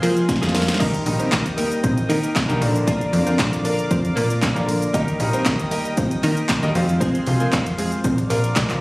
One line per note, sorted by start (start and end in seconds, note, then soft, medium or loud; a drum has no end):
0.00 0.34 F3 loud
0.00 0.16 G#3 medium
0.00 0.15 A#3 medium
0.00 0.16 C4 medium
0.00 0.15 F4 medium
0.00 0.78 G#4 medium
0.00 0.15 A#4 medium
0.00 0.78 C5 medium
0.00 0.78 F5 medium
0.00 0.78 C6 medium
0.00 open hi-hat medium
0.00 shaker medium
0.04 0.15 G#4 loud
0.16 0.27 G#3 medium
0.16 0.27 C4 medium
0.16 0.28 F4 medium
0.16 0.28 G#4 medium
0.16 closed hi-hat medium
0.16 shaker medium
0.28 muted clean electric guitar stroke soft
0.28 kick loud
0.28 snare medium
0.28 closed hi-hat medium
0.28 shaker medium
0.36 snare medium
0.41 0.72 F2 loud
0.41 0.71 F3 medium
0.41 0.71 G#3 medium
0.41 0.53 G#3 medium
0.41 0.71 C4 medium
0.41 0.53 C4 medium
0.41 0.53 F4 medium
0.41 0.71 F4 loud
0.41 0.54 G#4 medium
0.41 snare medium
0.41 closed hi-hat soft
0.41 shaker soft
0.49 snare medium
0.54 0.67 A#3 medium
0.54 0.67 A#4 medium
0.54 muted clean electric guitar stroke soft
0.54 snare loud
0.54 open hi-hat medium
0.54 shaker medium
0.62 snare medium
0.67 muted clean electric guitar stroke soft
0.67 snare loud
0.67 closed hi-hat medium
0.67 shaker medium
0.74 snare medium
0.79 1.01 D#2 loud
0.79 1.00 D#3 medium
0.79 1.00 G3 medium
0.79 1.04 A#3 medium
0.79 1.00 A#3 medium
0.79 1.04 D#4 medium
0.79 1.03 D#4 medium
0.79 1.00 D#4 medium
0.79 1.04 G4 medium
0.79 6.71 A#4 medium
0.79 1.05 A#4 medium
0.79 1.03 D#5 loud
0.79 2.59 D#5 medium
0.79 2.59 G5 medium
0.79 2.59 D#6 medium
0.79 kick loud
0.79 crash medium
0.94 closed hi-hat medium
0.94 shaker medium
1.05 1.17 A#1 medium
1.05 1.26 D#3 medium
1.05 1.26 G3 medium
1.05 1.26 A#3 medium
1.05 1.26 D#4 medium
1.05 muted clean electric guitar stroke soft
1.05 open hi-hat medium
1.05 shaker medium
1.19 1.32 A#3 medium
1.19 1.43 C4 medium
1.19 1.32 D#4 medium
1.19 1.32 G4 medium
1.19 1.31 A#4 medium
1.19 1.43 C5 medium
1.19 closed hi-hat medium
1.19 shaker medium
1.32 1.72 D#2 loud
1.32 2.09 D#3 medium
1.32 2.09 G3 medium
1.32 2.10 A#3 medium
1.32 2.10 D#4 medium
1.32 kick loud
1.32 snare medium
1.32 clap loud
1.32 closed hi-hat medium
1.32 shaker medium
1.45 muted clean electric guitar stroke soft
1.45 closed hi-hat medium
1.45 shaker medium
1.57 1.74 A#3 medium
1.57 1.71 A#3 medium
1.57 1.72 D#4 medium
1.57 1.71 G4 medium
1.57 1.70 A#4 medium
1.57 1.70 A#4 loud
1.57 open hi-hat medium
1.57 shaker medium
1.72 closed hi-hat medium
1.72 shaker medium
1.83 2.04 A#1 loud
1.83 2.07 C4 medium
1.83 2.06 C5 medium
1.83 muted clean electric guitar stroke soft
1.83 kick loud
1.83 closed hi-hat medium
1.83 shaker medium
1.97 muted clean electric guitar stroke soft
1.97 closed hi-hat medium
1.97 shaker medium
2.09 2.40 D#3 loud
2.09 2.24 A#3 medium
2.09 2.22 A#3 medium
2.09 2.23 D#4 medium
2.09 2.22 G4 medium
2.09 2.22 A#4 medium
2.09 open hi-hat medium
2.09 shaker medium
2.23 2.34 A#3 medium
2.23 2.35 D#4 medium
2.23 2.35 G4 medium
2.23 2.35 A#4 medium
2.23 closed hi-hat medium
2.23 shaker medium
2.35 muted clean electric guitar stroke soft
2.35 kick loud
2.35 snare medium
2.35 clap loud
2.35 closed hi-hat medium
2.35 shaker medium
2.49 2.59 B1 loud
2.49 2.61 D#3 loud
2.49 2.61 G3 medium
2.49 2.60 A#3 loud
2.49 2.60 A#3 medium
2.49 2.62 D#4 loud
2.49 2.61 D#4 medium
2.49 2.62 G4 medium
2.49 2.61 A#4 medium
2.49 closed hi-hat soft
2.49 shaker soft
2.61 3.01 A#1 loud
2.61 3.03 D3 loud
2.61 3.03 F3 medium
2.61 3.04 A#3 medium
2.61 3.04 D4 loud
2.61 4.92 D5 medium
2.61 4.92 F5 medium
2.61 4.92 D6 medium
2.61 muted clean electric guitar stroke soft
2.61 open hi-hat medium
2.61 shaker medium
2.75 muted clean electric guitar stroke soft
2.75 closed hi-hat medium
2.75 shaker medium
2.87 3.11 A#3 medium
2.87 3.11 D4 medium
2.87 3.10 D4 medium
2.87 3.12 F4 loud
2.87 3.12 A#4 medium
2.87 3.10 D5 loud
2.87 kick loud
2.87 closed hi-hat medium
2.87 shaker medium
3.01 closed hi-hat soft
3.01 shaker medium
3.13 3.24 F2 medium
3.13 3.33 D3 medium
3.13 3.33 F3 medium
3.13 3.33 A#3 medium
3.13 3.33 D4 loud
3.13 open hi-hat medium
3.13 shaker medium
3.27 3.39 A#3 medium
3.27 3.50 C4 medium
3.27 3.39 D4 medium
3.27 3.39 F4 medium
3.27 3.38 A#4 medium
3.27 3.49 C5 medium
3.27 closed hi-hat medium
3.27 shaker medium
3.39 3.79 A#1 loud
3.39 4.16 D3 medium
3.39 4.16 F3 medium
3.39 4.16 A#3 medium
3.39 4.16 D4 loud
3.39 kick loud
3.39 snare medium
3.39 clap loud
3.39 closed hi-hat medium
3.39 shaker medium
3.53 muted clean electric guitar stroke medium
3.53 closed hi-hat medium
3.53 shaker medium
3.64 3.81 A#3 medium
3.64 3.77 A#3 medium
3.64 3.78 D4 medium
3.64 3.78 F4 medium
3.64 3.77 A#4 medium
3.64 open hi-hat medium
3.64 shaker medium
3.79 closed hi-hat soft
3.79 shaker medium
3.90 4.11 F2 loud
3.90 4.14 C4 medium
3.90 4.13 C5 medium
3.90 muted clean electric guitar stroke soft
3.90 kick loud
3.90 closed hi-hat medium
3.90 shaker medium
4.04 muted clean electric guitar stroke soft
4.04 closed hi-hat medium
4.04 shaker medium
4.16 4.47 A#2 loud
4.16 4.30 A#3 medium
4.16 4.29 A#3 medium
4.16 4.30 D4 medium
4.16 4.29 F4 loud
4.16 4.29 A#4 medium
4.16 4.29 A#4 loud
4.16 open hi-hat medium
4.16 shaker medium
4.30 4.41 A#3 medium
4.30 4.41 D4 medium
4.30 4.42 F4 medium
4.30 4.42 A#4 medium
4.30 closed hi-hat medium
4.30 shaker medium
4.42 muted clean electric guitar stroke soft
4.42 kick loud
4.42 snare medium
4.42 clap loud
4.42 closed hi-hat medium
4.42 shaker medium
4.56 4.86 A#1 loud
4.56 4.85 D3 medium
4.56 4.85 F3 medium
4.56 4.85 A#3 medium
4.56 4.67 A#3 medium
4.56 4.85 D4 loud
4.56 4.67 D4 medium
4.56 4.68 F4 medium
4.56 4.68 A#4 medium
4.56 closed hi-hat soft
4.56 shaker soft
4.68 4.81 A#3 medium
4.68 4.80 A#4 medium
4.68 muted clean electric guitar stroke soft
4.68 open hi-hat medium
4.68 shaker medium
4.82 muted clean electric guitar stroke soft
4.82 closed hi-hat medium
4.82 shaker medium
4.93 5.14 D#2 medium
4.93 5.14 D#3 medium
4.93 5.14 G3 medium
4.93 5.18 A#3 medium
4.93 5.14 A#3 medium
4.93 5.18 D#4 loud
4.93 5.14 D#4 medium
4.93 5.17 D#4 medium
4.93 5.18 G4 medium
4.93 5.19 A#4 loud
4.93 6.73 D#5 medium
4.93 5.17 D#5 loud
4.93 6.73 G5 medium
4.93 6.74 D#6 medium
4.93 kick loud
4.93 closed hi-hat medium
4.93 shaker medium
5.08 closed hi-hat medium
5.08 shaker medium
5.19 5.31 A#1 medium
5.19 5.40 D#3 medium
5.19 5.40 G3 medium
5.19 5.40 A#3 medium
5.19 5.40 D#4 loud
5.19 muted clean electric guitar stroke soft
5.19 open hi-hat medium
5.19 shaker medium
5.33 5.46 A#3 medium
5.33 5.57 C4 medium
5.33 5.46 D#4 medium
5.33 5.45 G4 medium
5.33 5.45 A#4 medium
5.33 5.56 C5 medium
5.33 closed hi-hat medium
5.33 shaker medium
5.46 5.86 D#2 loud
5.46 6.23 D#3 medium
5.46 6.23 G3 medium
5.46 6.23 A#3 medium
5.46 6.23 D#4 medium
5.46 kick loud
5.46 snare medium
5.46 clap loud
5.46 closed hi-hat medium
5.46 shaker medium
5.59 muted clean electric guitar stroke soft
5.59 closed hi-hat medium
5.59 shaker medium
5.71 5.88 A#3 medium
5.71 5.84 A#3 medium
5.71 5.85 D#4 medium
5.71 5.85 G4 loud
5.71 5.84 A#4 medium
5.71 5.84 A#4 loud
5.71 open hi-hat medium
5.71 shaker medium
5.85 muted clean electric guitar stroke medium
5.85 closed hi-hat medium
5.85 shaker medium
5.97 6.18 A#1 loud
5.97 6.21 C4 medium
5.97 6.20 C5 medium
5.97 muted clean electric guitar stroke medium
5.97 kick loud
5.97 closed hi-hat medium
5.97 shaker medium
6.11 muted clean electric guitar stroke soft
6.11 closed hi-hat medium
6.11 shaker medium
6.23 6.54 D#3 loud
6.23 6.37 A#3 medium
6.23 6.36 A#3 medium
6.23 6.37 D#4 medium
6.23 6.36 G4 medium
6.23 6.36 A#4 medium
6.23 6.36 A#4 loud
6.23 open hi-hat medium
6.23 shaker medium
6.37 6.48 A#3 soft
6.37 6.48 D#4 medium
6.37 6.49 G4 medium
6.37 6.49 A#4 medium
6.37 closed hi-hat medium
6.37 shaker medium
6.49 muted clean electric guitar stroke soft
6.49 kick loud
6.49 snare medium
6.49 clap loud
6.49 closed hi-hat medium
6.49 shaker medium
6.62 6.72 D#2 loud
6.62 6.75 D#3 loud
6.62 6.75 G3 loud
6.62 6.75 A#3 loud
6.62 6.74 A#3 medium
6.62 6.75 D#4 loud
6.62 6.75 D#4 medium
6.62 6.75 G4 medium
6.62 6.76 A#4 medium
6.62 closed hi-hat soft
6.62 shaker soft
6.74 7.15 F2 loud
6.74 7.17 F3 loud
6.74 7.17 G#3 medium
6.74 7.17 C4 medium
6.74 7.17 F4 loud
6.74 8.03 G#4 medium
6.74 8.03 C5 medium
6.74 8.81 F5 medium
6.74 8.03 C6 medium
6.74 muted clean electric guitar stroke soft
6.74 open hi-hat medium
6.74 shaker medium
6.88 muted clean electric guitar stroke soft
6.88 closed hi-hat medium
6.88 shaker medium
7.00 7.25 G#3 medium
7.00 7.25 C4 medium
7.00 7.24 C4 medium
7.00 7.25 F4 medium
7.00 7.26 G#4 medium
7.00 7.24 C5 loud
7.00 kick loud
7.00 closed hi-hat medium
7.00 shaker medium
7.15 closed hi-hat medium
7.15 shaker medium
7.27 7.37 C2 medium
7.27 7.47 F3 medium
7.27 7.47 G#3 medium
7.27 7.47 C4 medium
7.27 7.47 F4 medium
7.27 open hi-hat medium
7.27 shaker medium
7.40 7.53 G#3 medium
7.40 7.64 A#3 medium
7.40 7.53 C4 medium
7.40 7.52 F4 medium
7.40 7.52 G#4 medium
7.40 7.63 A#4 medium
7.40 closed hi-hat medium
7.40 shaker medium
7.53 7.93 F2 loud
7.53 8.05 F3 medium
7.53 8.05 G#3 medium
7.53 8.05 C4 medium
7.53 8.05 F4 medium
7.53 kick loud
7.53 snare medium
7.53 clap loud
7.53 closed hi-hat medium
7.53 shaker medium
7.66 muted clean electric guitar stroke medium
7.66 closed hi-hat medium
7.66 shaker medium
7.78 7.95 G#3 medium
7.78 7.91 G#3 medium
7.78 7.92 C4 medium
7.78 7.92 F4 medium
7.78 7.91 G#4 medium
7.78 open hi-hat medium
7.78 shaker medium
7.92 muted clean electric guitar stroke soft
7.92 closed hi-hat medium
7.92 shaker medium
8.04 8.24 A#1 loud
8.04 8.28 C4 medium
8.04 8.81 A#4 medium
8.04 8.27 C5 medium
8.04 8.81 D5 medium
8.04 8.81 D6 medium
8.04 muted clean electric guitar stroke soft
8.04 kick loud
8.04 closed hi-hat medium
8.04 shaker medium
8.18 muted clean electric guitar stroke medium
8.18 closed hi-hat medium
8.18 shaker medium
8.30 8.54 A#1 medium
8.30 8.44 A#3 medium
8.30 8.43 A#3 medium
8.30 8.44 D4 medium
8.30 8.43 F4 medium
8.30 8.42 A#4 medium
8.30 8.43 A#4 loud
8.30 open hi-hat medium
8.30 shaker medium
8.44 8.56 A#3 medium
8.44 8.56 D4 medium
8.44 8.56 F4 medium
8.44 8.56 A#4 medium
8.44 closed hi-hat medium
8.44 shaker medium
8.56 8.79 C2 medium
8.56 kick loud
8.56 snare medium
8.56 clap loud
8.56 closed hi-hat medium
8.56 shaker medium
8.70 8.81 F3 medium
8.70 8.81 A#3 medium
8.70 8.81 D4 medium
8.70 8.81 F4 medium
8.70 muted clean electric guitar stroke soft
8.70 clap medium
8.70 closed hi-hat soft
8.70 shaker soft